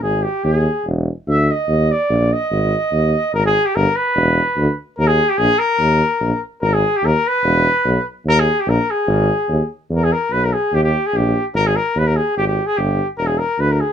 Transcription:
0.02 G#1 G#4
0.23 G4
0.44 D#2 G4
0.55 G#4
0.85 E1
1.27 D2 E5
1.51 D#5
1.68 D#2
1.92 D5
2.09 A#1
2.33 D#5
2.51 G#1
2.91 D#2
3.33 G#1 A#4
3.46 G#4
3.65 G4
3.75 G1 A#4
3.96 B4
4.16 E1
4.57 D2
4.97 D#2 A#4
5.07 G#4
5.29 G4
5.38 A#1 G#4
5.59 A#4
5.79 D#2
6.20 A#1
6.61 G#1 A#4
6.73 G#4
6.96 G4
7.03 D#2 A#4
7.27 B4
7.44 E1
7.85 B1
8.25 D#2 A#4
8.39 G#4
8.60 G4
8.67 A#1 A#4
8.90 G#4
9.07 G#1
9.48 D#2
9.89 E2
9.94 A#4
10.04 G#4
10.12 A#4
10.31 B1 B4
10.44 A#4
10.53 G#4
10.72 D#2 G4
10.83 G4
11.06 G#4
11.13 A#1 G4
11.54 G#1 A#4
11.67 G#4
11.76 A#4
11.95 D#2 B4
12.07 A#4
12.16 G#4
12.37 G#1 G4
12.47 G4
12.66 G#4
12.77 G1 G4
13.18 E1 A#4
13.27 G#4
13.38 A#4
13.58 D2 B4
13.71 A#4
13.80 G#4

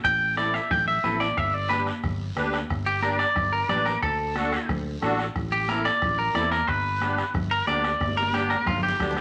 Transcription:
0.04 A1 G5, bombo low, bombo rim, high conga, long guiro
0.37 C4 E4 A4 D5, bombo rim, high conga, short guiro
0.54 E5, bombo rim, short guiro
0.71 A1 G5, bombo low, bombo rim, high conga, low conga, long guiro
0.88 E5
1.03 A1 C4 E4 A4 B4, bombo rim, high conga, low conga, short guiro
1.20 D5, bombo rim, short guiro
1.37 G1 E5, bombo low, bombo rim, high conga, long guiro
1.54 D5
1.69 D4 G4 B4, bombo rim, high conga, short guiro
1.87 bombo rim, short guiro
2.03 G1, bombo low, bombo rim, high conga, low conga, long guiro
2.36 D2 D4 G4 B4, bombo rim, high conga, short guiro
2.53 bombo rim, short guiro
2.70 G1, bombo low, bombo rim, high conga, long guiro
2.86 G4
3.02 D4 G4 A#4 D5, bombo rim, high conga, short guiro
3.19 D5, bombo rim, short guiro
3.36 G1, bombo low, bombo rim, high conga, low conga, long guiro
3.53 A#4
3.69 A1 D4 G4 B4 D5, bombo rim, high conga, low conga, short guiro
3.86 A#4, bombo rim, short guiro
4.02 D2 A4, bombo low, bombo rim, high conga, long guiro
4.35 D4 F#4 A4, bombo rim, high conga, short guiro
4.52 bombo rim, short guiro
4.69 D2, bombo low, bombo rim, high conga, low conga, long guiro
5.01 A1 D4 F#4 A4, bombo rim, high conga, short guiro
5.19 bombo rim, short guiro
5.36 A1, bombo low, bombo rim, high conga, low conga, long guiro
5.52 G4
5.68 C4 E4 A4 A#4, bombo rim, high conga, short guiro
5.85 D5, bombo rim, short guiro
6.02 A1, bombo low, bombo rim, high conga, low conga, long guiro
6.19 A#4
6.34 E2 C4 E4 A4 D5, bombo rim, high conga, short guiro
6.52 A#4, bombo rim, short guiro
6.67 G1 B4, bombo low, bombo rim, high conga, long guiro
7.00 B3 D4 G4, bombo rim, high conga, short guiro
7.18 bombo rim, short guiro
7.34 G1, bombo low, bombo rim, high conga, low conga, long guiro
7.51 A#4
7.67 D2 B3 D4 G4 D5, bombo rim, high conga, short guiro
7.84 bombo rim, short guiro
8.00 G1, bombo low, bombo rim, high conga, long guiro
8.11 high conga
8.17 A#4
8.22 high conga
8.33 B3 D4 G4, bombo rim, high conga, short guiro
8.50 A#4, bombo rim, short guiro
8.55 high conga
8.66 G1 F4, bombo low, bombo rim, low conga, long guiro
8.77 low conga
8.83 G4
8.88 low conga
9.00 D2 B3 D4 G4, bombo low, bombo rim, low conga, short guiro
9.11 low conga
9.17 bombo rim, short guiro

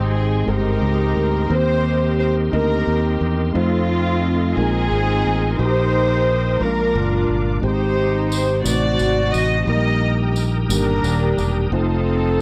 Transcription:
Already playing: G#1 G#2 G#3 C4 D#4 G4 C5 D#5 G5 C6
0.14 G#4
0.46 G1 G#3 C4 D#4 G4 A#4 C5
0.82 C#2
1.16 D2
1.49 D#2 D#3 A#3 C4 D#4 G4 A#4 B4 C5
1.58 C5
2.19 C5
2.51 D2 A#3 C4 D#4 G4 A#4 D#5
2.87 D#2
3.21 E2
3.54 F2 A3 C4 D#4 F4 A4 C5 D#5 F5
4.56 A#1 G#3 A#3 C4 D#4 F4 G#4 A#4 G#5
4.92 G#1
5.25 A1
5.57 A#1 A#2 D#4 F#4 A#4 C5 G5 D#6
5.61 D#4 G4
6.60 A#1 A#2 G#3 A#3 C#4 D4 F4 A#4 F5 D6
6.67 D4
6.95 F#1
7.29 G1
7.61 G#1 G#2 G#3 C4 D#4 G4 C5 G5
7.66 D#4 G4
8.32 C5, tambourine
8.64 A1 C3 A3 C4 D#4 F#4 B4 D5 F#5 A5, tambourine
8.73 C5
8.99 G#1, tambourine
9.33 A1 D#5, tambourine
9.66 A#1 A#2 F#3 A#3 D#4 G4 A#4 D#5 G5 A#5 D#6
9.73 G3
10.36 tambourine
10.69 G1 D#3 G3 A#3 D4 G4 A#4, tambourine
11.04 D#1, tambourine
11.38 E1, tambourine
11.72 F1 A3 C4 D#4 F4 A4 C5 F5 A5

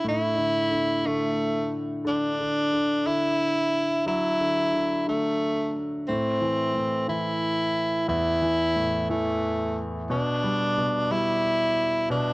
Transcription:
Already playing: D3
0.04 A2
0.09 E4
0.37 D3
0.71 D3
1.04 D3 A3
2.05 D3 D4
2.40 D3
2.72 D3
3.06 D3 E4
4.06 F#3 E4
4.40 D3
4.73 D3
5.07 D3 A3
6.08 A2 C4
6.41 E3
6.75 A2
7.08 E3 E4
8.08 E2 E4
8.42 E3
8.76 A2
9.10 E3 A3
10.10 B2 D4
10.43 G3
10.78 B2
11.11 G3 E4
12.10 B2 D4

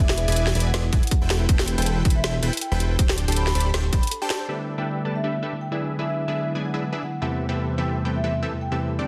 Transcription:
0.00 E1 E4 G#4 B4 D5 G#5
0.09 E5, snare
0.18 B4, closed hi-hat
0.28 E1 E4 G#4 B4 D5 E5 G#5, closed hi-hat
0.32 closed hi-hat
0.36 closed hi-hat
0.47 E4, snare
0.55 E1 E4 G#4 B4 D5 G#5, closed hi-hat
0.60 closed hi-hat
0.66 F#5
0.74 E1 E4 G#4 B4 D5 G#5, snare, closed hi-hat
0.84 E4
0.93 E1 E4 G#4 B4 D5 G#5, kick, closed hi-hat
1.03 E4 F#5, closed hi-hat
1.07 closed hi-hat
1.11 G#4, kick, closed hi-hat
1.22 E1 E4 A4 B4 C5 G5
1.30 A4, snare, closed hi-hat
1.40 E4
1.49 E1 E4 A4 B4 C5 G5, kick, closed hi-hat
1.59 E4, snare
1.68 G4, closed hi-hat
1.78 E1 E4 A4 B4 C5 G5, closed hi-hat
1.82 closed hi-hat
1.86 A4, closed hi-hat
1.97 E4
2.05 E1 E4 A4 B4 C5 B5, kick, closed hi-hat
2.10 closed hi-hat
2.15 E4 E5
2.24 E1 E4 G4 A4 B4 C5 G5, snare, closed hi-hat
2.43 E1 E4 A4 B4 C5 G5, closed hi-hat
2.53 E4, closed hi-hat
2.57 closed hi-hat
2.61 G5, closed hi-hat
2.72 E1 E4 A4 B4 C5 G5
2.80 G4, closed hi-hat
2.99 D1 D4 G4 A4 C5 G5, kick, closed hi-hat
3.09 G4, snare
3.18 closed hi-hat
3.28 D1 D4 G4 A4 C5 G5 A5, closed hi-hat
3.32 closed hi-hat
3.36 A4 B5, closed hi-hat
3.47 B5, snare
3.55 D1 D4 G4 A4 C5 B5, closed hi-hat
3.60 closed hi-hat
3.66 G4
3.74 D1 D4 G4 A4 C5 G5, snare, closed hi-hat
3.84 G4
3.93 D1 D4 G4 A4 C5 G5 B5, kick, closed hi-hat
4.03 closed hi-hat
4.07 closed hi-hat
4.11 A4, closed hi-hat
4.22 D4 G4 A4 C5 G5 A5
4.30 snare, closed hi-hat
4.40 C5
4.48 D3 G3 A3 B3 D4 E4 G4 A4 B4 E5
4.77 D3 G3 A3 B3 D4 E4 G4 A4 B4 E5 G5
5.04 D3 G3 A3 B3 D4 E4 G4 A4 B4 A5
5.16 E5
5.24 D4 G4 A4 B4 E5
5.33 D3 G3 A3 B3 E4
5.43 D4 G4 A4 B4 E5
5.52 D3 G3 A3 B3 E4
5.61 G5
5.71 D3 F#3 G#3 B3 D4 E4 G#4 B4 E5
5.98 D3 F#3 G#3 B3 D4 E4 G#4 B4 E5
6.09 E5
6.27 D3 F#3 G#3 B3 D4 E4 G#4 B4 E5
6.54 D3 F#3 G#3 B3 D4 E4 G#4 B4 G#5
6.66 F#5
6.74 D4 E4 G#4 B4 E5 F#5
6.83 D3 F#3 G#3 B3 E4
6.93 D4 E4 G#4 B4 E5
7.02 D3 F#3 G#3 B3 E4 F#5
7.21 E2 C3 E3 G3 A3 B3 C4 E4 G4 A4 B4 E5
7.48 E2 C3 E3 G3 A3 B3 C4 E4 G4 A4 B4 E5
7.77 E2 C3 E3 G3 A3 B3 C4 E4 G4 A4 B4 E5 G5
8.04 E2 C3 E3 G3 A3 B3 C4 E4 G4 A4 B4 G5
8.16 E5
8.24 E3 C4 G4 A4 B4 E5
8.33 E2 C3 G3 A3 B3 E4
8.43 E3 C4 G4 A4 B4 E5
8.52 E2 C3 G3 A3 B3 E4
8.61 G5
8.71 E2 C3 E3 G3 A3 B3 C4 E4 G4 A4 B4 E5
8.98 D3 G3 A3 C4 D4 E4 G4 A4 D5

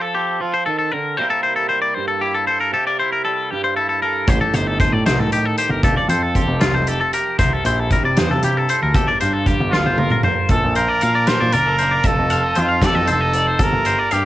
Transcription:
Already playing: F3
0.01 A4
0.14 C4 G4
0.40 F3 F4
0.54 C5
0.66 D#3 A4
0.79 A4
0.92 D3 A#4
1.17 C3 G3 A#3 E4 C5
1.22 A#4
1.30 A4
1.43 E4 C5
1.56 A4
1.69 G3 C5
1.82 D5
1.94 G2 C5
2.08 A4
2.21 E4 G4
2.35 A4
2.47 A4 C5
2.60 A#4
2.73 C3 G4 A4
2.87 A#4 D5
3.00 E4 C5
3.13 A#4
3.25 G3 A4
3.51 G2 G4
3.64 C5
3.76 E4 A4
3.89 A4
4.02 A4 A#4
4.27 A1 A2 G4 C5, kick, closed hi-hat
4.41 A4
4.54 G1 D#4 C5, closed hi-hat
4.67 A4
4.80 A3 C5, kick, closed hi-hat
4.92 A2 D5
5.06 C2 D#3 C5, snare, closed hi-hat
5.19 A2 A4
5.31 A2 D#4 G4, closed hi-hat
5.45 A4
5.58 G4 C5, closed hi-hat
5.69 G1 A#4
5.83 F1 F3 G4 A4, kick, closed hi-hat
5.96 A4 D5
6.08 F2 A4 C5, closed hi-hat
6.23 A4
6.35 C4 G4, kick, closed hi-hat
6.48 F1
6.60 C2 C3 F4, snare, closed hi-hat
6.73 F1 C5
6.87 G4 A4, closed hi-hat
6.99 A4
7.13 G4 A#4, closed hi-hat
7.39 C2 C3 A#4 C5, kick, closed hi-hat
7.53 A4
7.64 A#1 E4 C5, closed hi-hat
7.80 A4
7.91 G3 A#4, kick, closed hi-hat
8.03 C3 D5
8.17 E2 G2 C5, snare, closed hi-hat
8.31 C3 A4
8.43 C3 E4 G4, closed hi-hat
8.57 A4
8.69 A4 C5, closed hi-hat
8.83 D2 A#4
8.94 G1 G2 G4 A4, kick, closed hi-hat
9.07 A#4 D5
9.20 G2 D4 C5, closed hi-hat
9.33 F4 A4
9.46 G3 G4, kick, closed hi-hat
9.61 G1
9.71 D2 D3 F4, snare
9.86 G1 C5
9.98 F4 A#4, high tom
10.10 A#4, mid tom
10.23 A#4 C5, mid tom
10.49 A#1 A#2 A4, kick, closed hi-hat
10.64 A#1
10.75 F3 A#4 C5, closed hi-hat
10.89 D5
11.01 A#2 D4 F5, closed hi-hat
11.15 D5
11.27 G4 A#4 C5, snare, closed hi-hat
11.40 A#2 A#4 D5
11.52 F#1 D4 A#4 D5, closed hi-hat
11.67 F4 A4
11.78 D4 C5, closed hi-hat
11.91 D5
12.04 F1 F3 A4 D#5, kick, closed hi-hat
12.19 F1
12.30 C4 F5, closed hi-hat
12.43 D#5
12.55 F2 D#4 F4 C5, closed hi-hat
12.69 F5
12.82 D#4 D5, kick, snare, closed hi-hat
12.86 A4
12.95 F2 D#5
13.07 F1 D#4 C5, closed hi-hat
13.12 A4
13.21 D#5
13.33 D#4 D5, closed hi-hat
13.47 C5
13.59 G1 G2 A4 A#4, kick, closed hi-hat
13.73 G1
13.85 G3 C5, closed hi-hat
13.99 D5
14.11 G2 A#3 G4 F5, closed hi-hat

